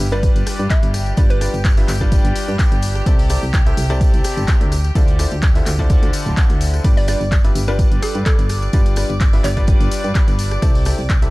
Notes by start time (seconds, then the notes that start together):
Already playing: G4 G5
0.00 G1
0.12 G3 D4 F4 G4 B4 D5, tambourine
0.23 kick, closed hi-hat, tambourine
0.36 G1, closed hi-hat, tambourine
0.46 cross-stick, open hi-hat, tambourine
0.59 G2, closed hi-hat, tambourine
0.70 E5, kick, clap, closed hi-hat, tambourine
0.83 G1, closed hi-hat, tambourine
0.94 cross-stick, open hi-hat, tambourine
1.06 closed hi-hat, tambourine
1.17 G1 G3 D4 F4 G4 B4 D5, kick, closed hi-hat, tambourine
1.30 B4, closed hi-hat, tambourine
1.41 G3 D4 F4 G4 B4 D5, cross-stick, open hi-hat, tambourine
1.54 G1, closed hi-hat, tambourine
1.65 kick, clap, closed hi-hat, tambourine
1.77 G3 D4 F4 G4 B4 E5, open hi-hat, tambourine
1.88 G1, clap, open hi-hat, tambourine
2.01 G3 D4 F4 G4 B4 D5, kick, closed hi-hat
2.12 kick, closed hi-hat, tambourine
2.25 G1, closed hi-hat, tambourine
2.36 open hi-hat, tambourine
2.48 G2, closed hi-hat, tambourine
2.59 kick, clap, closed hi-hat, tambourine
2.72 G1, closed hi-hat, tambourine
2.82 open hi-hat, tambourine
2.96 cross-stick, closed hi-hat, tambourine
3.06 C2 C3 E4 G4 A4 C5 D5, kick, closed hi-hat, tambourine
3.19 open hi-hat, tambourine
3.30 C3 E4 G4 A4 C5 D5, cross-stick, open hi-hat, tambourine
3.43 C2, tambourine
3.54 kick, clap, closed hi-hat, tambourine
3.66 C3 E4 G4 A4 C5 E5, closed hi-hat, tambourine
3.77 C2, open hi-hat, tambourine
3.90 C3 E4 G4 A4 C5 D5, closed hi-hat, tambourine
4.01 kick, closed hi-hat, tambourine
4.14 C2, closed hi-hat, tambourine
4.24 cross-stick, open hi-hat, tambourine
4.37 G1, closed hi-hat, tambourine
4.48 kick, clap, closed hi-hat, tambourine
4.61 D2, closed hi-hat, tambourine
4.72 cross-stick, open hi-hat, tambourine
4.84 closed hi-hat, tambourine
4.95 D2 D3 E4 F4 A4 C5 D5, kick, closed hi-hat, tambourine
5.07 closed hi-hat, tambourine
5.19 D3 E4 F4 A4 C5 D5, cross-stick, open hi-hat, tambourine
5.31 D2, closed hi-hat, tambourine
5.42 kick, clap, closed hi-hat, tambourine
5.55 D3 E4 F4 A4 C5 E5, open hi-hat, tambourine
5.66 D2, clap, open hi-hat, tambourine
5.79 D3 E4 F4 A4 C5 D5, kick, closed hi-hat
5.90 kick, closed hi-hat, tambourine
6.03 D2, closed hi-hat, tambourine
6.13 open hi-hat, tambourine
6.26 D1, closed hi-hat, tambourine
6.37 kick, clap, closed hi-hat, tambourine
6.49 D2, closed hi-hat, tambourine
6.61 open hi-hat, tambourine
6.74 cross-stick, closed hi-hat, tambourine
6.84 G1 G3 D4 F4 G4 B4 D5 D6, kick, closed hi-hat, tambourine
6.96 D5, open hi-hat, tambourine
7.08 G3 D4 F4 G4 B4 D5, cross-stick, open hi-hat, tambourine
7.21 G1, tambourine
7.32 kick, clap, closed hi-hat, tambourine
7.44 G3 D4 F4 G4 B4 E5, closed hi-hat, tambourine
7.55 G1, open hi-hat, tambourine
7.68 G3 D4 F4 G4 B4 D5, closed hi-hat, tambourine
7.79 kick, closed hi-hat, tambourine
7.92 G1, closed hi-hat, tambourine
8.02 A4, cross-stick, open hi-hat, tambourine
8.15 G2, closed hi-hat, tambourine
8.26 A4, kick, clap, closed hi-hat, tambourine
8.39 G1, closed hi-hat, tambourine
8.49 cross-stick, open hi-hat, tambourine
8.62 closed hi-hat, tambourine
8.73 G1 G3 D4 F4 G4 B4 D5, kick, closed hi-hat, tambourine
8.86 closed hi-hat, tambourine
8.96 G3 D4 F4 G4 B4 D5, cross-stick, open hi-hat, tambourine
9.10 G1, closed hi-hat, tambourine
9.21 kick, clap, closed hi-hat, tambourine
9.33 G3 D4 F4 G4 B4 E5, open hi-hat, tambourine
9.44 G1 D5, clap, open hi-hat, tambourine
9.57 G3 D4 F4 G4 B4 D5, kick, closed hi-hat, tambourine
9.67 kick, closed hi-hat, tambourine
9.81 G1, closed hi-hat, tambourine
9.91 open hi-hat, tambourine
10.04 G2, closed hi-hat, tambourine
10.15 kick, clap, closed hi-hat, tambourine
10.28 G1, closed hi-hat, tambourine
10.39 open hi-hat, tambourine
10.51 cross-stick, closed hi-hat, tambourine
10.62 C2 C3 E4 G4 A4 C5 D5, kick, closed hi-hat, tambourine
10.75 open hi-hat, tambourine
10.85 C3 E4 G4 A4 C5 D5, cross-stick, open hi-hat, tambourine
10.98 C2, tambourine
11.10 kick, clap, closed hi-hat, tambourine
11.22 C3 E4 G4 A4 C5 E5, closed hi-hat, tambourine